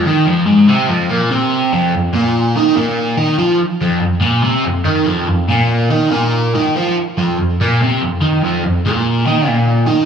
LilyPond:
\new Staff \with { instrumentName = "Overdriven electric guitar" } { \clef bass \time 4/4 \key f \minor \tempo 4 = 143 <ees ees'>8 <f, f>8 <aes, aes>8 <c c'>8 <f, f>8 <bes, bes>8 <c c'>4 | <f, f>8 f,8 <bes, bes>4 <ees ees'>8 <bes, bes>4 <ees ees'>8 | <f f'>8 r8 <f, f>8 f,8 <bes, bes>8 <c c'>8 f,8 <ees ees'>8 | <f, f>8 f,8 <bes, bes>4 <ees ees'>8 <bes, bes>4 <ees ees'>8 |
<f f'>8 r8 <f, f>8 f,8 <bes, bes>8 <c c'>8 f,8 <ees ees'>8 | <f, f>8 f,8 <bes, bes>4 <ees ees'>8 <bes, bes>4 <ees ees'>8 | }